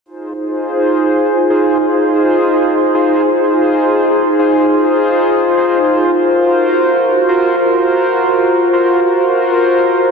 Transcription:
ambient pad
0.33 D#4 F4 G#4 C5
1.78 D#4 F4 G#4 C5
3.22 D#4 F4 G#4 C5
4.67 D#4 F4 G#4 C5
6.11 F4 F#4 A#4 C5
7.56 F4 F#4 A#4 C5
9.01 F4 F#4 A#4 C5

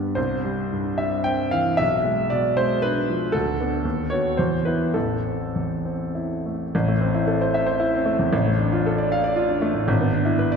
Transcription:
grand piano
Already playing: G2 G3 B3
0.15 C2 C5
0.44 G3
0.73 G2
0.98 G3 E5
1.24 C4 G5
1.51 E3 F5
1.77 B1 E5
2.04 G#3
2.30 B2 D5
2.57 G#3 C5
2.82 D4 B4
3.10 F3
3.32 D2 A4
3.61 B3 D4
3.85 D#2
4.10 B3 F#4 C#5
4.37 E2 C5
4.65 B3 E4 B4
4.94 A1 A4
5.26 C4
5.56 E2
5.85 C4
6.15 E4
6.46 A3
6.75 A1
6.88 A3
7.01 C4
7.15 E4
7.27 A4
7.41 C5
7.54 E5
7.66 C5
7.80 E4
7.94 C4
8.05 A3
8.19 E2
8.33 A1
8.47 A3
8.60 D4
8.73 F4
8.86 A4
8.98 D5
9.12 F5
9.24 D5
9.36 F4
9.48 D4
9.62 A3
9.74 A2
9.88 G#1
10.01 B3
10.13 D4
10.25 E4
10.39 B4
10.52 D5

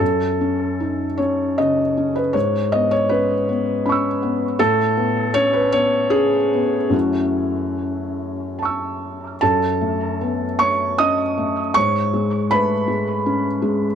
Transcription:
felt piano
Already playing: A4
0.00 F#2
0.41 C#4
0.80 D#4
1.18 C#4 C#5
1.58 C#3 D#5
1.97 C#4
2.16 B4
2.33 G#2 C#5
2.72 B3 D#5
2.91 C#5
3.09 C#4 B4
3.49 B3
3.86 C#4 B5 C#6
3.92 E6
4.23 B3
4.59 A2 A4
4.97 B3
5.34 C#4 C#5
5.53 B4
5.72 B3 C#5
6.10 C#4 G#4
6.53 B3
6.89 F#2 A3 C#4 E4 F#4
8.59 A5 C#6
8.65 E6
9.41 F#2 A4 A5
9.81 A3
10.21 B3
10.59 A3 C#5 C#6
10.98 C#4 D#5 D#6
11.38 A3
11.74 G#2 C#5 C#6
12.14 G#3
12.51 A3 B4 B5
12.88 G#3
13.26 C#4
13.62 G#3

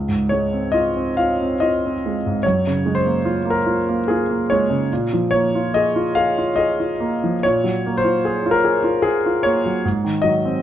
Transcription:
grand piano
Already playing: C#2
0.09 G#2
0.29 G#3 C#5
0.53 C4
0.72 F4 D#5
0.96 C4
1.17 F4 F5
1.42 C4
1.60 F4 D#5
1.86 C4
2.06 G#3
2.26 G#2
2.43 F#2 C#5
2.67 C#3
2.86 G#3
2.95 C5
3.06 A#3
3.25 F4
3.45 A#3
3.50 A#4
3.66 F4
3.89 A#3
4.08 F4 G#4
4.30 A#3
4.50 G#3 C#5
4.70 C#3
4.93 A#2
5.13 F3
5.31 A#3 C#5
5.55 F4
5.74 G#4 D#5
5.96 F4
6.15 G#4 F5
6.38 F4
6.56 G#4 D#5
6.80 F4
7.00 A#3
7.24 F3
7.43 A#2 C#5
7.64 F#3
7.86 A#3
7.97 C5
8.05 F4
8.25 G#4
8.46 F4
8.51 A#4
8.65 G#4
8.84 F4
9.02 G#4
9.26 F4
9.43 A#3 C#5
9.66 F#3
9.85 G#2
10.04 D#3
10.22 F#3 D#5
10.45 C4

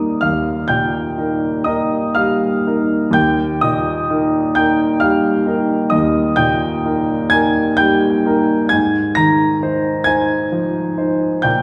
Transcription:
grand piano
Already playing: D#2 G3 D#4 A#4 D5 D#5 D6 D#6
0.21 D#2 F5 F6
0.68 A#2 G5 G6
1.18 D#4 A#4
1.64 D#4 A#4 D#5 D#6
2.15 G3 F5 F6
2.67 D#4 A#4
3.11 D#2 G5 G6
3.61 A#2 D#5 D#6
4.10 D#4 A#4
4.55 D#4 A#4 G5 G6
5.00 G3 F5 F6
5.47 D#4 A#4
5.90 D#2 D#5 D#6
6.36 A#2 G5 G6
6.85 D#4 A#4
7.30 D#4 A#4 G#5 G#6
7.77 G3 G5 G6
8.26 D#4 A#4
8.69 G#2 G#5 G#6
9.15 D#3 A#5 A#6
9.63 D#4 C5
10.04 D#4 C5 G#5 G#6
10.52 F3
10.98 D#4 C5
11.42 A#2 G5 G6

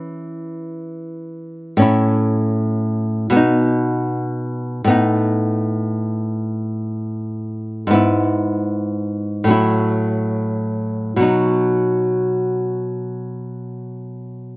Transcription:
nylon-string guitar
Already playing: E3 C#4 E4
1.77 A2 C#4
1.82 E4
3.30 B2 B3
3.36 D#4
4.84 A2 B3
4.90 D#4
7.87 G#2 B3
7.93 E4
9.44 A2 F#3
9.51 E4
11.16 B2 F#3
11.22 D#4

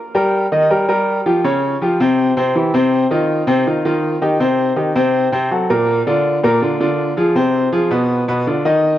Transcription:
grand piano
0.15 G3 G4 A#4
0.52 D#3 D#4 D#5
0.70 G3 G4 A#4
0.88 G3 G4 A#4
1.26 F3 F4 G4
1.44 C#3 C#4 C#5
1.81 F3 F4 G4
2.00 C3 C4 C5
2.37 C3 C4 C5
2.55 E3 E4 G4
2.74 C3 C4 C5
3.11 D#3 D#4 F4
3.47 C3 C4 C5
3.67 D#3 D#4 F4
3.85 D#3 D#4 F4
4.22 D#3 D#4 G4
4.40 C3 C4 C5
4.76 D#3 D#4 G4
4.96 C3 C4 C5
5.32 C3 C4 C5
5.51 F#3 F#4 A4
5.70 A#2 A#3 A#4
6.07 D3 D4 F4
6.43 A#2 A#3 A#4
6.62 D3 D4 F4
6.80 D3 D4 F4
7.17 F3 F4 G#4
7.35 C3 C4 C5
7.72 F3 F4 G#4
7.90 B2 B3 B4
8.28 B2 B3 B4
8.47 D3 D4 F4
8.65 D#3 D#4 D#5

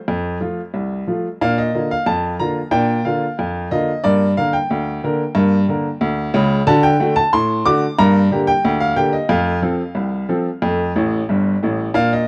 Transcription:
upright piano
Already playing: C5
0.08 F2
0.40 F3 A3 F4
0.74 C2
1.07 F3 A3 F4
1.41 A#2 D4 F5
1.58 D#5
1.75 D3 A#3 F4
1.91 F5
2.06 F2 A5
2.39 D3 A#3 F4 A#5
2.71 A#2 D4 G5
3.05 D3 A#3 F4 F5
3.39 F2
3.71 D3 A#3 F4 D#5
4.04 G2 A#3 D5
4.37 D3 A#3 A#4 F5
4.53 G5
4.71 D2
5.04 D3 A#3 A#4
5.35 G2 A#3
5.69 D3 A#3 A#4
6.01 D2
6.34 C#2 C#3
6.67 D3 F#4 A5
6.83 G5
7.00 D3 A3 F#4
7.16 A5
7.33 A2 C6
7.65 D3 A3 F#4 D6
7.99 G2 A#3 A#5
8.31 D3 A#3 G4
8.47 G5
8.65 D2
8.80 F5
8.96 D3 A#3 G4 G5
9.13 D#5
9.29 F2 A3 F5
9.62 F3 C4 A4
9.95 C2
10.29 F3 C4 A4
10.62 F2 A3
10.96 A1 A2
11.29 G1 G2
11.63 A1 A2
11.94 A#2 D4 F5
12.13 D#5

